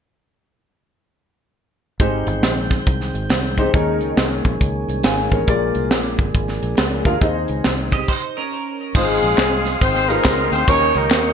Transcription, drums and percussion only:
2.00 kick loud
2.00 closed hi-hat medium
2.27 closed hi-hat medium
2.43 snare medium
2.43 closed hi-hat medium
2.71 kick medium
2.71 snare soft
2.71 closed hi-hat medium
2.87 kick medium
2.87 closed hi-hat medium
3.01 snare soft
3.15 closed hi-hat medium
3.30 snare loud
3.30 closed hi-hat medium
3.58 kick medium
3.58 closed hi-hat medium
3.74 kick loud
3.74 closed hi-hat medium
4.01 closed hi-hat medium
4.17 snare medium
4.17 closed hi-hat medium
4.45 kick medium
4.45 closed hi-hat medium
4.61 kick medium
4.61 closed hi-hat medium
4.89 closed hi-hat medium
5.03 snare loud
5.03 closed hi-hat medium
5.32 kick medium
5.32 closed hi-hat medium
5.47 kick loud
5.47 closed hi-hat medium
5.75 closed hi-hat medium
5.91 snare loud
5.91 closed hi-hat medium
6.19 kick medium
6.19 closed hi-hat medium
6.35 kick medium
6.35 closed hi-hat medium
6.48 snare soft
6.63 closed hi-hat medium
6.77 snare loud
6.77 closed hi-hat medium
7.05 kick medium
7.05 closed hi-hat medium
7.21 kick loud
7.21 closed hi-hat medium
7.48 closed hi-hat medium
7.64 snare medium
7.64 closed hi-hat medium
7.92 kick medium
7.92 closed hi-hat medium
8.08 kick medium
8.08 crash medium
8.95 kick loud
8.95 crash loud
8.95 tambourine medium
9.22 closed hi-hat medium
9.22 tambourine medium
9.38 snare loud
9.38 clap loud
9.38 closed hi-hat medium
9.38 tambourine loud
9.65 snare soft
9.65 closed hi-hat medium
9.65 tambourine medium
9.81 kick loud
9.81 closed hi-hat loud
9.81 tambourine medium
9.95 snare soft
10.10 closed hi-hat medium
10.10 tambourine medium
10.24 kick medium
10.24 snare loud
10.24 clap loud
10.24 closed hi-hat medium
10.24 tambourine loud
10.52 closed hi-hat medium
10.52 tambourine medium
10.68 kick loud
10.68 closed hi-hat loud
10.68 tambourine medium
10.95 closed hi-hat medium
10.95 tambourine medium
11.11 snare loud
11.11 clap loud
11.11 closed hi-hat medium
11.11 tambourine loud

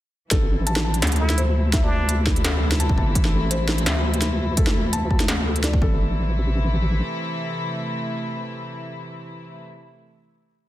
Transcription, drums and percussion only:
0.31 kick loud
0.31 snare medium
0.31 closed hi-hat medium
0.67 closed hi-hat medium
0.76 snare medium
0.94 closed hi-hat soft
1.02 snare loud
1.02 closed hi-hat medium
1.07 closed hi-hat medium
1.12 closed hi-hat medium
1.16 closed hi-hat soft
1.30 snare medium
1.30 closed hi-hat soft
1.38 closed hi-hat medium
1.73 kick loud
1.73 snare medium
1.73 closed hi-hat medium
2.09 closed hi-hat medium
2.27 kick medium
2.27 snare medium
2.36 closed hi-hat soft
2.44 snare loud
2.44 closed hi-hat medium
2.72 snare medium
2.72 closed hi-hat soft
2.80 closed hi-hat medium
2.89 kick loud
2.98 kick medium
3.15 kick loud
3.15 closed hi-hat medium
3.25 snare medium
3.51 closed hi-hat medium
3.69 snare medium
3.78 closed hi-hat soft
3.86 snare loud
3.86 closed hi-hat medium
4.14 closed hi-hat soft
4.22 snare soft
4.22 closed hi-hat medium
4.57 kick loud
4.57 closed hi-hat medium
4.67 snare medium
4.93 closed hi-hat medium
5.11 kick medium
5.20 snare medium
5.20 closed hi-hat soft
5.28 snare loud
5.28 closed hi-hat medium
5.56 closed hi-hat soft
5.64 snare medium
5.64 closed hi-hat medium
5.73 kick loud
5.82 kick loud

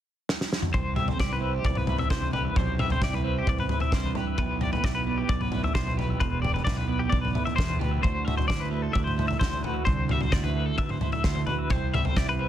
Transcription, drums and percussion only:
0.29 snare medium
0.41 snare medium
0.53 snare medium
0.62 mid tom medium
0.74 kick loud
0.74 floor tom medium
0.96 floor tom medium
0.96 mid tom medium
1.08 floor tom medium
1.19 kick medium
1.19 snare medium
1.19 mid tom medium
1.64 kick loud
1.64 floor tom medium
1.75 mid tom medium
1.87 floor tom medium
1.87 mid tom medium
1.98 floor tom medium
2.10 kick loud
2.10 snare medium
2.22 floor tom medium
2.33 floor tom medium
2.56 kick medium
2.56 floor tom medium
2.79 floor tom medium
2.79 mid tom medium
2.90 floor tom medium
3.02 kick loud
3.02 snare medium
3.02 mid tom medium
3.13 floor tom medium
3.47 kick loud
3.47 floor tom medium
3.58 mid tom medium
3.69 floor tom medium
3.69 mid tom medium
3.80 floor tom medium
3.92 kick loud
3.92 snare medium
4.04 floor tom medium
4.15 floor tom medium
4.38 kick loud
4.38 floor tom medium
4.61 floor tom medium
4.61 mid tom medium
4.73 floor tom medium
4.84 kick loud
4.84 snare medium
4.84 mid tom medium
5.29 kick loud
5.29 floor tom medium
5.41 mid tom medium
5.52 floor tom medium
5.52 mid tom medium
5.64 floor tom medium
5.75 kick loud
5.75 snare medium
5.87 floor tom medium
5.99 floor tom medium
6.21 kick loud
6.21 floor tom medium
6.45 floor tom medium
6.45 mid tom medium
6.56 floor tom medium
6.67 kick loud
6.67 snare medium
6.67 mid tom medium
6.78 floor tom medium
7.12 kick loud
7.12 floor tom medium
7.25 mid tom medium
7.35 floor tom medium
7.35 mid tom medium
7.47 floor tom medium
7.58 kick loud
7.58 snare medium
7.70 floor tom medium
7.81 floor tom medium
8.04 kick loud
8.04 floor tom medium
8.28 floor tom medium
8.28 mid tom medium
8.38 floor tom medium
8.50 kick medium
8.50 snare medium
8.50 mid tom medium
8.95 kick loud
8.95 floor tom medium
9.07 mid tom medium
9.19 floor tom medium
9.19 mid tom medium
9.31 floor tom medium
9.41 kick loud
9.41 snare medium
9.53 floor tom medium
9.64 floor tom medium
9.86 kick loud
9.86 floor tom medium
10.09 floor tom medium
10.09 mid tom medium
10.21 floor tom medium
10.32 kick loud
10.32 snare medium
10.32 mid tom medium
10.44 floor tom medium
10.78 kick loud
10.78 floor tom medium
10.89 mid tom medium
11.01 floor tom medium
11.01 mid tom medium
11.12 floor tom medium
11.24 kick loud
11.24 snare medium
11.35 floor tom medium
11.47 floor tom medium
11.70 kick loud
11.70 floor tom medium
11.94 floor tom medium
11.94 mid tom medium
12.05 floor tom medium
12.16 kick loud
12.16 snare medium
12.16 mid tom medium

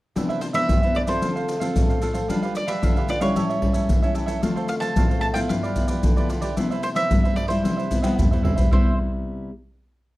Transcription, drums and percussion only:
0.16 pandeiro medium
0.16 maracas medium
0.16 surdo medium
0.30 pandeiro soft
0.30 maracas soft
0.42 pandeiro medium
0.42 maracas medium
0.54 pandeiro medium
0.54 maracas medium
0.69 pandeiro medium
0.69 maracas medium
0.69 surdo medium
0.83 pandeiro soft
0.83 maracas soft
0.95 pandeiro medium
1.07 pandeiro medium
1.07 maracas medium
1.22 pandeiro medium
1.22 maracas medium
1.22 surdo soft
1.37 pandeiro soft
1.37 maracas soft
1.49 pandeiro medium
1.49 maracas medium
1.61 pandeiro medium
1.61 maracas medium
1.76 pandeiro medium
1.76 maracas medium
1.76 surdo medium
1.90 pandeiro soft
1.90 maracas soft
2.02 pandeiro medium
2.02 maracas medium
2.15 pandeiro medium
2.15 maracas medium
2.30 pandeiro medium
2.30 maracas medium
2.30 surdo medium
2.43 pandeiro soft
2.43 maracas soft
2.55 pandeiro medium
2.55 maracas medium
2.68 pandeiro medium
2.68 maracas medium
2.83 pandeiro medium
2.83 maracas medium
2.83 surdo medium
2.97 pandeiro soft
2.97 maracas soft
3.09 pandeiro medium
3.09 maracas medium
3.21 pandeiro medium
3.21 maracas medium
3.36 pandeiro medium
3.36 maracas medium
3.36 surdo soft
3.50 pandeiro soft
3.50 maracas soft
3.62 pandeiro medium
3.62 surdo medium
3.74 pandeiro medium
3.74 maracas medium
3.89 pandeiro medium
3.89 maracas medium
3.89 surdo medium
4.03 pandeiro soft
4.03 maracas soft
4.15 pandeiro soft
4.15 maracas medium
4.28 pandeiro medium
4.28 maracas medium
4.43 pandeiro medium
4.43 maracas medium
4.43 surdo medium
4.57 pandeiro soft
4.57 maracas soft
4.68 pandeiro medium
4.68 maracas medium
4.82 pandeiro medium
4.82 maracas medium
4.96 pandeiro medium
4.96 maracas medium
4.96 surdo medium
5.11 pandeiro soft
5.11 maracas soft
5.23 pandeiro medium
5.35 pandeiro medium
5.35 maracas medium
5.50 pandeiro medium
5.50 maracas medium
5.50 surdo soft
5.64 pandeiro soft
5.64 maracas soft
5.76 pandeiro medium
5.76 maracas medium
5.76 surdo medium
5.88 pandeiro medium
5.88 maracas medium
6.03 pandeiro medium
6.03 maracas medium
6.03 surdo medium
6.17 pandeiro soft
6.17 maracas soft
6.30 pandeiro medium
6.30 maracas medium
6.42 pandeiro medium
6.42 maracas medium
6.57 pandeiro medium
6.57 maracas medium
6.57 surdo medium
6.71 pandeiro soft
6.71 maracas soft
6.83 pandeiro medium
6.83 maracas medium
6.96 pandeiro medium
6.96 maracas medium
7.11 pandeiro medium
7.11 maracas medium
7.11 surdo medium
7.25 pandeiro soft
7.25 maracas soft
7.37 pandeiro medium
7.50 pandeiro medium
7.50 maracas medium
7.65 pandeiro medium
7.65 maracas medium
7.65 surdo soft
7.79 pandeiro soft
7.79 maracas soft
7.91 pandeiro medium
7.91 maracas medium
7.91 surdo medium
8.04 pandeiro medium
8.04 tamborim medium
8.04 maracas medium
8.19 surdo medium
8.19 pandeiro medium
8.19 maracas medium
8.19 surdo medium
8.33 pandeiro soft
8.33 maracas soft
8.45 surdo medium
8.45 pandeiro medium
8.58 pandeiro soft
8.58 maracas medium
8.58 surdo medium
8.72 surdo medium

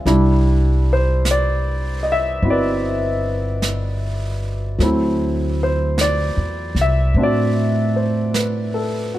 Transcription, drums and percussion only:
0.06 brush sweep soft
0.06 snare soft
1.25 brush sweep soft
1.25 snare soft
1.25 hi-hat pedal medium
2.44 brush sweep soft
3.62 brush sweep soft
3.62 snare soft
3.62 hi-hat pedal soft
4.80 brush sweep soft
4.80 snare soft
5.98 brush sweep soft
5.98 snare soft
5.98 hi-hat pedal soft
6.76 snare soft
7.16 brush sweep soft
8.34 brush sweep soft
8.34 snare soft
8.34 hi-hat pedal soft

